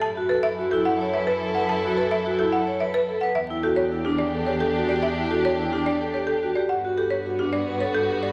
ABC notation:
X:1
M:3/4
L:1/16
Q:1/4=108
K:Edor
V:1 name="Marimba"
a z B e z A f z e B z f | a z B e z A f z e B z f | e z A c z G d z c A z d | e z A c z G d z c A z d |
f z A c z G d z c A z d |]
V:2 name="Vibraphone"
z F A z F E z c B z A B | z F A z F E z c B z A B | z E F z E D z A G z F G | z E F z E D z A G z F G |
z F G z F D z B A z G A |]
V:3 name="Violin section"
[EA]12- | [EA]8- [EA]3 z | [DG]12- | [DG]8- [DG]3 z |
[B,F]12 |]
V:4 name="Double bass" clef=bass
F,,12- | F,,12 | E,,12- | E,,12 |
G,,12 |]